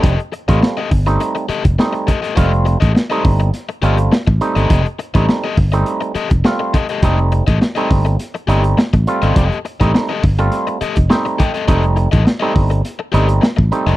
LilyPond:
<<
  \new Staff \with { instrumentName = "Overdriven electric guitar" } { \time 4/4 \key f \major \tempo 4 = 103 <g' a' ees''>16 r8 <g' a' ees''>16 r16 <g' a' ees''>16 r4 <g' a' ees''>16 r8. <g' a' ees''>16 <g' a' ees''>16 | <g' a' ees''>16 r8 <g' a' ees''>16 r16 <g' a' ees''>16 r4 <g' a' ees''>16 r4 <g' a' ees''>16 | <g' a' ees''>16 r8 <g' a' ees''>16 r16 <g' a' ees''>16 r4 <g' a' ees''>16 r8. <g' a' ees''>16 <g' a' ees''>16 | <g' a' ees''>16 r8 <g' a' ees''>16 r16 <g' a' ees''>16 r4 <g' a' ees''>16 r4 <g' a' ees''>16 |
<g' a' ees''>16 r8 <g' a' ees''>16 r16 <g' a' ees''>16 r4 <g' a' ees''>16 r8. <g' a' ees''>16 <g' a' ees''>16 | <g' a' ees''>16 r8 <g' a' ees''>16 r16 <g' a' ees''>16 r4 <g' a' ees''>16 r4 <g' a' ees''>16 | }
  \new Staff \with { instrumentName = "Clav" } { \time 4/4 \key f \major <g a c' d'>16 r8 <g a c' f'>8 r8 <g a c' ees'>8. r8 <g a c' ees'>8 r8 | <g a c' f'>8. r8 <g a c' ees'>8. r8 <g a c' f'>8 r8 <g a c' ees'>8~ | <g a c' ees'>16 r8 <g a c' ees'>8 r8 <g a c' ees'>8. r8 <g a c' f'>8 r8 | <g a c' ees'>8. r8 <g a c' ees'>8. r8 <g a c' ees'>8 r8 <g a c' f'>8~ |
<g a c' f'>16 r8 <g a c' ees'>8 r8 <g a c' f'>8. ees''8 <g a c' ees' c''>8 g'8 | <g a c' ees'>8. r8 <g a c' ees'>8. r8 <g a c' ees'>8 r8 <g a c' ees'>8 | }
  \new Staff \with { instrumentName = "Fingered electric bass" } { \clef bass \time 4/4 \key f \major f,,16 r8 a,,16 r8 g,,8 r8. f,,16 r4 | f,,8. a,,16 r8 g,,8 r8 g,,8 r16 a,,16 r16 g,,16 | f,,16 r8 a,,16 r8 g,,8 r8. f,,16 r4 | f,,8. a,,16 r8 g,,8 r8 g,,8 r16 a,,16 r16 g,,16 |
f,,16 r8 a,,16 r8 g,,8 r8. f,,16 r4 | f,,8. a,,16 r8 g,,8 r8 g,,8 r16 a,,16 r16 f,,16 | }
  \new DrumStaff \with { instrumentName = "Drums" } \drummode { \time 4/4 <hh bd>16 hh16 hh16 <hh bd>16 sn8 <hho bd>16 hh16 hh16 hh16 hh16 <hh bd>16 sn16 hh16 <hh bd>16 hh16 | <hh bd>16 hh16 hh16 <hh bd>16 sn16 hh16 <hho bd>16 hh16 <hh sn>16 hh16 hh16 hh16 sn16 bd16 hh16 hh16 | <hh bd>16 hh16 hh16 <hh bd>16 sn8 <hho bd>16 hh16 hh16 hh16 hh16 <hh bd>16 sn8 <hh bd>16 hh16 | <hh bd>16 hh16 hh16 <hh bd>16 sn16 hh16 <hho bd>16 hh16 <hh sn>16 hh16 hh16 hh16 sn16 <hh bd>16 hh16 hh16 |
<hh bd>16 hh16 hh16 <hh bd>16 sn8 <hho bd>16 hh16 <hh sn>16 hh16 hh16 <hh bd>16 sn16 hh16 <hh bd>16 hh16 | <hh bd>16 hh16 hh16 <hh bd>16 sn8 <hho bd>16 hh16 <hh sn>8 hh16 hh16 sn16 bd16 hh16 hh16 | }
>>